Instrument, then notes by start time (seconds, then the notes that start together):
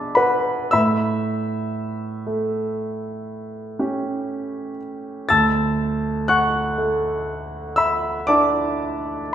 grand piano
Already playing: B2 D4 G#4 D5 E5 A5 B5 D6 E6
0.15 B4 F#5 B5
0.71 A2 E5 B5 E6
2.27 A3
3.79 C#4 G4
5.29 D2 A5 E6 A6
6.28 F#5 C#6 F#6
6.78 A3
7.76 E5 B5 E6
8.27 D4 E4 D5 A5 D6